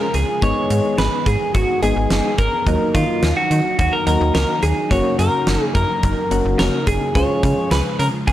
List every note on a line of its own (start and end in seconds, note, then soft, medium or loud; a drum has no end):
0.00 0.40 C#3 medium
0.00 0.40 F3 medium
0.00 2.63 G#3 medium
0.00 0.40 F4 medium
0.00 0.15 A#4 medium
0.14 0.25 C#2 medium
0.14 0.43 G#4 medium
0.14 closed hi-hat medium
0.42 0.53 G#1 loud
0.42 2.64 D#3 medium
0.42 1.06 G#3 medium
0.42 1.06 B3 medium
0.42 2.64 B3 medium
0.42 1.06 D#4 medium
0.42 1.06 G#4 medium
0.42 2.64 G#4 medium
0.42 0.98 C#5 loud
0.42 kick loud
0.42 closed hi-hat medium
0.70 0.81 G#2 loud
0.70 closed hi-hat medium
0.98 1.09 G#1 loud
0.98 1.27 B4 loud
0.98 snare loud
0.98 closed hi-hat medium
1.26 1.37 G#2 medium
1.26 1.54 G#4 medium
1.26 kick loud
1.26 closed hi-hat medium
1.54 1.65 G#1 loud
1.54 1.82 F#4 medium
1.54 kick loud
1.54 closed hi-hat medium
1.82 1.93 G#1 medium
1.82 2.30 G#3 medium
1.82 2.30 B3 medium
1.82 2.30 D#4 medium
1.82 2.30 G#4 medium
1.82 2.40 G#4 loud
1.82 closed hi-hat medium
1.96 2.07 G#1 loud
2.10 2.21 F#1 loud
2.10 snare loud
2.10 closed hi-hat medium
2.38 2.49 G#1 medium
2.38 2.96 A#4 loud
2.38 kick loud
2.38 closed hi-hat medium
2.67 2.77 D#2 loud
2.67 4.89 D#3 medium
2.67 3.30 F#3 medium
2.67 4.89 F#3 medium
2.67 4.89 A#3 medium
2.67 3.30 A#3 medium
2.67 7.11 D#4 medium
2.67 3.30 D#4 medium
2.67 3.30 A#4 medium
2.67 kick loud
2.67 closed hi-hat medium
2.95 3.05 D#3 loud
2.95 3.36 F4 medium
2.95 kick loud
2.95 closed hi-hat medium
3.23 3.33 D#2 loud
3.23 snare loud
3.23 closed hi-hat medium
3.37 3.78 F#4 medium
3.51 3.61 D#3 loud
3.51 closed hi-hat medium
3.79 3.89 D#2 loud
3.79 3.93 F#4 medium
3.79 kick loud
3.79 closed hi-hat medium
3.93 4.06 A#4 medium
4.07 4.17 D#2 loud
4.07 4.55 F#3 medium
4.07 4.55 A#3 medium
4.07 4.55 D#4 medium
4.07 4.55 F#4 medium
4.07 4.34 A#4 medium
4.07 closed hi-hat medium
4.21 4.31 D#2 loud
4.35 4.45 C#2 medium
4.35 4.64 A#4 medium
4.35 snare loud
4.35 closed hi-hat medium
4.63 4.73 D#2 medium
4.63 4.92 G#4 medium
4.63 closed hi-hat medium
4.91 5.01 F#1 loud
4.91 8.33 C#3 medium
4.91 5.55 F#3 medium
4.91 7.13 F#3 medium
4.91 5.55 A#3 medium
4.91 7.13 A#3 medium
4.91 5.55 C#4 medium
4.91 5.55 F#4 medium
4.91 5.18 C#5 loud
4.91 kick loud
4.91 closed hi-hat medium
5.19 5.29 F#2 loud
5.19 5.74 A#4 medium
5.19 closed hi-hat medium
5.47 5.57 F#1 loud
5.47 snare loud
5.47 closed hi-hat medium
5.75 5.85 F#2 medium
5.75 6.58 A#4 loud
5.75 kick medium
5.75 closed hi-hat medium
6.03 6.14 F#1 loud
6.03 kick loud
6.03 closed hi-hat medium
6.31 6.41 F#1 loud
6.31 6.79 F#3 medium
6.31 6.79 A#3 medium
6.31 6.79 C#4 medium
6.31 6.79 F#4 medium
6.31 closed hi-hat medium
6.45 6.55 F#1 loud
6.59 6.70 F1 medium
6.59 6.85 A#4 medium
6.59 snare loud
6.59 closed hi-hat medium
6.87 6.97 F#1 medium
6.87 7.13 G#4 medium
6.87 kick loud
6.87 closed hi-hat medium
7.15 7.26 C#2 loud
7.15 8.33 F3 medium
7.15 8.33 G#3 medium
7.15 7.79 G#3 medium
7.15 7.79 C#4 medium
7.15 8.33 F4 medium
7.15 7.79 F4 medium
7.15 7.79 G#4 medium
7.15 7.71 C#5 loud
7.15 kick loud
7.15 closed hi-hat medium
7.43 7.54 C#3 loud
7.43 kick loud
7.43 closed hi-hat medium
7.71 7.82 C#2 loud
7.71 7.99 B4 medium
7.71 snare loud
7.71 closed hi-hat medium
7.99 8.10 C#3 loud
7.99 8.07 A#4 medium
7.99 closed hi-hat medium
8.27 8.33 C#2 loud
8.27 8.33 G#4 medium
8.27 kick loud
8.27 closed hi-hat medium